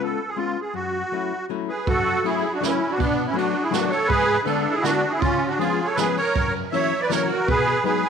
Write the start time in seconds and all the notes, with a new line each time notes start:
0.00 G#3 B3 C#4 F4 A4
0.28 G#4
0.36 G#3 B3 C#4 F4
0.61 G#4
0.74 F#2 F#4
1.12 F#3 A3 C#4 E4
1.50 F#3 A3 C#4 E4
1.68 G#4 B4
1.87 F#2 F#4 A4, kick, ride
2.24 F#3 A3 C#4 E4 G#4, ride
2.53 D4 F#4
2.61 F#3 A3 C#4 E4, snare, ride
2.66 C#4
2.89 D4 F#4
2.98 B2 B3 D4, kick, ride
3.26 C#4 E4
3.34 F#3 A3 B3 D4 F#4
3.38 ride
3.62 E4 G#4
3.71 F#3 A3 B3 D4 F#4, snare, ride
3.90 A4 C#5, ride
4.06 G#2 G#4 B4, kick, ride
4.44 D3 G#3 B3 D4 A4, ride
4.71 E4 G#4
4.76 E4
4.82 D3 G#3 B3 D4 F#4, snare, ride
5.10 E4 G#4
5.19 C#3 C#4 F4, kick, ride
5.23 C#4
5.47 D4 F#4
5.57 F3 G#3 B3 C#4 F4 G#4, ride
5.85 A4 C#5
5.95 F3 G#3 G#4 B4, snare, ride
5.99 B3 C#4
6.17 A#4 C#5, ride
6.36 F#2, kick, ride
6.71 E3 F#3 A#3 C#4 C#5 E5, ride
7.00 B4 D5
7.10 E3 F#3 A#3 C#4 A#4 C#5, snare, ride
7.26 F#4 A#4
7.32 F#4
7.48 B2 G#4 B4, kick, ride
7.84 F#3 G#3 B3 D#4 G#4 B4, ride